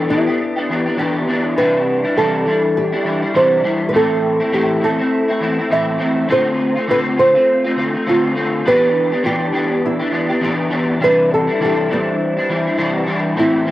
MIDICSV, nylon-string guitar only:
0, 0, Header, 1, 2, 480
1, 0, Start_track
1, 0, Key_signature, 0, "major"
1, 0, Tempo, 589971
1, 1277, Time_signature, 4, 2, 24, 8
1, 11156, End_track
2, 0, Start_track
2, 0, Title_t, "Nylon-string guitar"
2, 0, Program_c, 0, 24
2, 0, Note_on_c, 0, 69, 87
2, 82, Note_on_c, 0, 64, 90
2, 88, Note_off_c, 0, 69, 0
2, 800, Note_off_c, 0, 64, 0
2, 809, Note_on_c, 0, 64, 74
2, 1284, Note_on_c, 0, 71, 101
2, 1298, Note_off_c, 0, 64, 0
2, 1766, Note_off_c, 0, 71, 0
2, 1769, Note_on_c, 0, 69, 93
2, 2251, Note_off_c, 0, 69, 0
2, 2254, Note_on_c, 0, 67, 83
2, 2694, Note_off_c, 0, 67, 0
2, 2735, Note_on_c, 0, 72, 85
2, 3160, Note_off_c, 0, 72, 0
2, 3163, Note_on_c, 0, 71, 72
2, 3203, Note_off_c, 0, 71, 0
2, 3221, Note_on_c, 0, 69, 102
2, 3695, Note_on_c, 0, 67, 87
2, 3704, Note_off_c, 0, 69, 0
2, 3933, Note_off_c, 0, 67, 0
2, 3938, Note_on_c, 0, 69, 94
2, 4615, Note_off_c, 0, 69, 0
2, 4658, Note_on_c, 0, 76, 88
2, 5095, Note_off_c, 0, 76, 0
2, 5144, Note_on_c, 0, 72, 102
2, 5578, Note_off_c, 0, 72, 0
2, 5620, Note_on_c, 0, 71, 100
2, 5682, Note_off_c, 0, 71, 0
2, 5851, Note_on_c, 0, 72, 97
2, 6532, Note_off_c, 0, 72, 0
2, 6583, Note_on_c, 0, 65, 77
2, 7060, Note_on_c, 0, 71, 104
2, 7064, Note_off_c, 0, 65, 0
2, 7530, Note_off_c, 0, 71, 0
2, 7533, Note_on_c, 0, 67, 93
2, 7972, Note_off_c, 0, 67, 0
2, 8020, Note_on_c, 0, 64, 83
2, 8489, Note_off_c, 0, 64, 0
2, 8498, Note_on_c, 0, 64, 76
2, 8934, Note_off_c, 0, 64, 0
2, 8981, Note_on_c, 0, 71, 99
2, 9214, Note_off_c, 0, 71, 0
2, 9224, Note_on_c, 0, 69, 88
2, 9433, Note_off_c, 0, 69, 0
2, 9477, Note_on_c, 0, 67, 96
2, 9702, Note_off_c, 0, 67, 0
2, 9705, Note_on_c, 0, 60, 82
2, 10616, Note_off_c, 0, 60, 0
2, 10898, Note_on_c, 0, 64, 89
2, 11156, Note_off_c, 0, 64, 0
2, 11156, End_track
0, 0, End_of_file